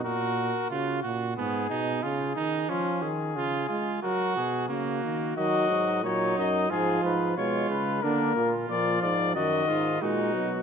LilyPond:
<<
  \new Staff \with { instrumentName = "Cornet" } { \time 4/4 \key fis \mixolydian \tempo 4 = 91 ais'4 fis'8 r8 gis'4 gis'4 | eis'8 gis'4. ais'8 gis'8 fis'4 | \key ees \minor ees''4 des''8 ees''8 aes'8 ces''8 des''8 ces''8 | bes'4 d''8 d''8 ees''4 ges'4 | }
  \new Staff \with { instrumentName = "Trumpet" } { \time 4/4 \key fis \mixolydian fis'4 eis'8 fis'8 b8 dis'8 eis'8 dis'8 | cis'8 r8 eis'8 eis'8 fis'4 ais4 | \key ees \minor ges'4 ees'4 f'4 f'4 | d'8 f'4. ges'8 f'8 ees'4 | }
  \new Staff \with { instrumentName = "Trombone" } { \clef bass \time 4/4 \key fis \mixolydian ais,4 cis8 ais,8 gis,8 b,8 cis8 dis8 | eis8 dis8 cis8 gis8 fis8 b,8 cis8 dis8 | \key ees \minor ges4 ges4 f4 aes4 | bes4 f4 ees4 aes8 ges8 | }
  \new Staff \with { instrumentName = "Euphonium" } { \clef bass \time 4/4 \key fis \mixolydian r1 | r1 | \key ees \minor ees8 aes,8 bes,8 ges,8 aes,8 aes,8 ces8 des8 | d8 bes,8 bes,8 aes,8 ges,8 aes,8 bes,8 ces8 | }
>>